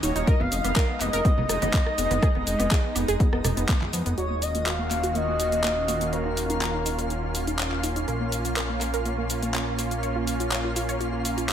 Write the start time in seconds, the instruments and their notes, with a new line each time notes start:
Already playing: supersaw synth D#3 A#3 C#4 F#4, synth texture D#5
0.03 analog synth bass D#1, synth pluck D#4, analog synth lead C#5, open hi-hat, cabasa
0.16 analog synth bass D#1, synth pluck D#4, closed hi-hat, cabasa
0.27 supersaw synth G#3 D#4, synth pluck A#4, analog synth lead D#5, kick, closed hi-hat, cabasa
0.40 analog synth bass F1, synth pluck B3, analog synth lead F5, high conga
0.52 analog synth bass F1, open hi-hat, cabasa
0.64 analog synth bass F1, synth pluck B3, closed hi-hat, cabasa, high woodblock
0.76 synth pluck A#4, kick, clap, closed hi-hat, cabasa
0.89 synth pluck B3
1.00 analog synth bass F1, synth pluck B3, analog synth lead D#5, clap, open hi-hat, cabasa, high woodblock
1.13 analog synth bass F1, synth pluck A#4, closed hi-hat, cabasa
1.25 synth pluck B3, kick, closed hi-hat, cabasa
1.38 analog synth bass F1, synth pluck B3, low conga
1.49 analog synth bass F1, cross-stick, open hi-hat, cabasa
1.62 analog synth bass F1, synth pluck B3, closed hi-hat, high conga, cabasa, high woodblock
1.74 synth pluck B3, kick, clap, closed hi-hat, cabasa
1.86 cross-stick
1.98 analog synth bass F1, synth pluck B3, open hi-hat, cabasa
2.11 analog synth bass F1, synth pluck B3, closed hi-hat, high conga, cabasa
2.23 synth pluck G#4, kick, cross-stick, closed hi-hat, cabasa
2.35 analog synth bass F1, synth pluck B3, high conga
2.47 analog synth bass F1, open hi-hat, cabasa
2.59 analog synth bass F1, synth pluck B3, closed hi-hat, cabasa, high woodblock
2.71 synth pluck G#4, kick, clap, closed hi-hat, cabasa
2.84 synth pluck B3
2.95 analog synth bass F1, synth pluck B3, open hi-hat, cabasa, high woodblock
3.08 analog synth bass F1, synth pluck G#4, closed hi-hat, cabasa
3.20 synth pluck B3, kick, closed hi-hat, cabasa
3.33 analog synth bass F1, synth pluck B3, cross-stick
3.44 analog synth bass F1, cross-stick, open hi-hat, low conga, cabasa, high woodblock
3.57 analog synth bass F1, synth pluck B3, closed hi-hat, cabasa
3.69 synth pluck B3, kick, clap, closed hi-hat, cabasa
3.81 clap, high conga
3.93 analog synth bass F2, synth pluck B3, open hi-hat, cabasa
4.06 analog synth bass F1, synth pluck B3, closed hi-hat, cabasa
4.18 analog synth bass D#1, supersaw synth D#3 A#3 C#4 F4 F#4, synth pluck F#4, analog synth lead C#5, synth texture F5, closed hi-hat, cabasa
4.30 synth pluck A#3
4.42 analog synth lead D#5, open hi-hat, cabasa
4.55 synth pluck A#3, closed hi-hat, cabasa
4.66 synth pluck F#4, analog synth lead F5, clap, closed hi-hat, cabasa
4.79 synth pluck A#3
4.91 synth pluck A#3, clap, open hi-hat, cabasa
5.03 synth pluck F#4, closed hi-hat, cabasa
5.15 synth pluck A#3, analog synth lead D#5, closed hi-hat, cabasa
5.28 synth pluck A#3
5.40 open hi-hat, cabasa
5.52 synth pluck A#3, closed hi-hat, cabasa
5.64 synth pluck A#3, clap, closed hi-hat, cabasa
5.88 synth pluck A#3, open hi-hat, cabasa
6.01 synth pluck A#3, closed hi-hat, cabasa
6.13 synth pluck A#4, analog synth lead A#4, closed hi-hat, cabasa
6.25 synth pluck D#4
6.37 open hi-hat, cabasa
6.50 synth pluck D#4, closed hi-hat, cabasa
6.61 synth pluck A#4, clap, closed hi-hat, cabasa
6.74 synth pluck D#4
6.86 synth pluck D#4, open hi-hat, cabasa
6.99 synth pluck A#4, closed hi-hat, cabasa
7.10 synth pluck D#4, closed hi-hat, cabasa
7.23 synth pluck D#4
7.35 open hi-hat, cabasa
7.47 synth pluck D#4, closed hi-hat, cabasa
7.59 synth pluck D#4, clap, closed hi-hat, cabasa
7.72 clap
7.83 synth pluck D#4, open hi-hat, cabasa
7.96 synth pluck D#4, closed hi-hat, cabasa
8.08 analog synth bass A#1, synth pluck A#4, closed hi-hat, cabasa
8.21 synth pluck A#3
8.32 open hi-hat, cabasa
8.45 synth pluck A#3, closed hi-hat, cabasa
8.57 synth pluck A#4, clap, closed hi-hat, cabasa
8.69 synth pluck A#3
8.81 synth pluck A#3, clap, open hi-hat, cabasa
8.94 synth pluck A#4, closed hi-hat, cabasa
9.05 synth pluck A#3, closed hi-hat, cabasa
9.18 synth pluck A#3
9.30 open hi-hat, cabasa
9.43 synth pluck A#3, closed hi-hat, cabasa
9.54 synth pluck A#3, clap, closed hi-hat, cabasa
9.79 synth pluck A#3, open hi-hat, cabasa
9.91 synth pluck A#3, closed hi-hat, cabasa
10.03 synth pluck C#5, closed hi-hat, cabasa
10.16 synth pluck F4
10.27 open hi-hat, cabasa
10.40 synth pluck F4, closed hi-hat, cabasa
10.52 synth pluck C#5, clap, closed hi-hat, cabasa
10.64 synth pluck F4
10.76 synth pluck F4, open hi-hat, cabasa
10.89 synth pluck C#5, closed hi-hat, cabasa
11.01 synth pluck F4, closed hi-hat, cabasa
11.13 synth pluck F4
11.25 open hi-hat, cabasa
11.38 synth pluck F4, closed hi-hat, cabasa
11.49 synth pluck F4, clap, closed hi-hat, cabasa